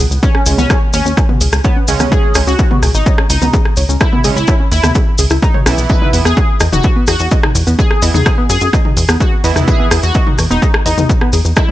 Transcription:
0.11 C#2, maracas
0.23 C#4 C#5, kick, maracas
0.35 C#4, cross-stick
0.46 C#2 C#3 G#3 C#4, open hi-hat, maracas
0.58 C#2 B3 C#4, mid tom, maracas
0.70 G#4, kick, cross-stick, maracas
0.93 D#2 C#4 C#5, open hi-hat, maracas
1.05 D#2 C#4, maracas
1.17 kick, cross-stick, maracas
1.29 B3, mid tom
1.41 C#2 G#4, open hi-hat, maracas
1.52 C#2, cross-stick, maracas
1.64 B3 C#5, kick, maracas
1.76 C#4
1.88 C#2 C#3 G#3 C#4, open hi-hat, maracas
2.00 C#2 B3, cross-stick, mid tom, maracas
2.12 G#4, kick, maracas
2.35 C#2 C#3 G#3 C#4 C#5, cross-stick, open hi-hat, maracas
2.47 C#2 C#4 F#4, maracas
2.59 kick, maracas
2.71 B3, mid tom
2.83 C#2 G#4, cross-stick, open hi-hat, maracas
2.94 G#1 D#4, maracas
3.06 C#5, kick, maracas
3.18 C#4, cross-stick
3.30 C#2 D#4, open hi-hat, maracas
3.42 C#2 B3, mid tom, maracas
3.53 G#4, kick, maracas
3.65 cross-stick
3.77 C#2 C#5, open hi-hat, maracas
3.89 C#2 C#4, maracas
4.01 E4, kick, cross-stick, maracas
4.13 B3, mid tom
4.24 C#2 C#3 G#3 C#4 G#4, open hi-hat, maracas
4.36 C#2 E4, maracas
4.47 C#5, kick, cross-stick, maracas
4.60 C#4
4.72 D#2 E4, open hi-hat, maracas
4.83 D#2 B3, cross-stick, mid tom, maracas
4.95 G#4, kick, maracas
5.18 C#2 G#4, open hi-hat, maracas
5.30 C#2 E4, cross-stick, maracas
5.42 D#4, kick, maracas
5.54 C#5, mid tom
5.66 B1 E3 B3 C#4 E4, cross-stick, open hi-hat, maracas
5.78 B1, maracas
5.89 B4 D#5, kick, maracas
6.02 D#4, mid tom
6.13 E2 E3 B3 E4, open hi-hat, maracas
6.25 E2 B3 G#4, cross-stick, maracas
6.37 G#4, kick, maracas
6.60 E2 D#5, cross-stick, open hi-hat, maracas
6.72 E1 D#4 F#4, mid tom, maracas
6.83 kick, maracas
6.96 B3
7.07 E2 F#4 G#4, cross-stick, open hi-hat, maracas
7.19 E2, maracas
7.31 D#5, kick, maracas
7.43 D#4, cross-stick, mid tom
7.55 E2, open hi-hat, maracas
7.67 E2 B3, maracas
7.79 G#4, kick, maracas
7.91 cross-stick
8.02 E2 E3 B3 E4 D#5, open hi-hat, maracas
8.14 E2 D#4 G#4, mid tom, maracas
8.26 kick, cross-stick, maracas
8.38 B3
8.49 F#2 G#4, open hi-hat, maracas
8.61 F#2, maracas
8.73 D#5, kick, cross-stick, maracas
8.85 D#4, mid tom
8.97 E2, open hi-hat, maracas
9.08 E2 B3, cross-stick, maracas
9.20 F#4 G#4, kick, maracas
9.44 E2 E3 B3 E4 D#5, open hi-hat, maracas
9.56 E2 D#4, cross-stick, mid tom, maracas
9.68 G#4, kick, maracas
9.80 B3
9.91 E2 E3 B3 E4 G#4, cross-stick, open hi-hat, maracas
10.03 E2 F#4, maracas
10.14 D#5, kick, maracas
10.27 D#4, mid tom
10.38 E2, cross-stick, open hi-hat, maracas
10.50 E1 B3 D#4, maracas
10.62 G#4, kick, maracas
10.74 cross-stick
10.86 E2 D#4 D#5, open hi-hat, maracas
10.98 E2 D#4, mid tom, maracas
11.09 kick, maracas
11.21 B3, cross-stick
11.33 E2 G#4, open hi-hat, maracas
11.45 E2, maracas
11.56 E4 D#5, kick, cross-stick, maracas

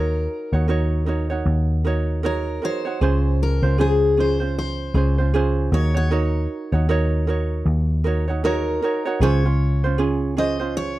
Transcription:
Already playing: D#2 D#4 F#4 A#4 C#5
0.53 D#2 D#4 F#4 C#5
0.68 D#4 F#4 A#4 C#5
1.06 D#4 F#4 A#4 C#5
1.30 D#4 F#4 C#5
1.46 D#2
1.85 D#4 F#4 A#4 C#5
2.23 D#4 F#4 A#4 C#5
2.62 D#4 F#4 A#4 C5 C#5
2.85 D#4 F#4 C#5
3.01 C#2 C#4 F4 G#4 C5
3.43 A#4
3.62 C#2 C#4 F4 C5
3.78 C#4 F4 G#4 C5
4.17 C#4 F4 G#4 C5
4.40 C#4 F4 C5
4.58 C5
4.94 C#2 C#4 F4 G#4 C5
5.18 C#4 F4 C5
5.34 C#4 F4 G#4 C5
5.72 D#2 D#4 F#4 A#4 C#5
5.94 D#4 F#4 C#5
6.11 D#4 F#4 A#4 C#5
6.72 D#2 D#4 F#4 C#5
6.89 D#4 F#4 A#4 C#5
7.27 D#4 F#4 A#4 C#5
7.66 D#2
8.04 D#4 F#4 A#4 C#5
8.28 D#4 F#4 C#5
8.44 D#4 F#4 A#4 C#5
8.82 D#4 F#4 A#4 C#5
9.05 D#4 F#4 C#5
9.20 C#2 C#4 F4 G#4 C5 C#5
9.46 C#4 F4
9.84 C#4 F4 C5
9.98 C#4 F4 G#4
10.37 C#4 F4 G#4 C5 D#5
10.60 C#4 F4 C5
10.77 C#5

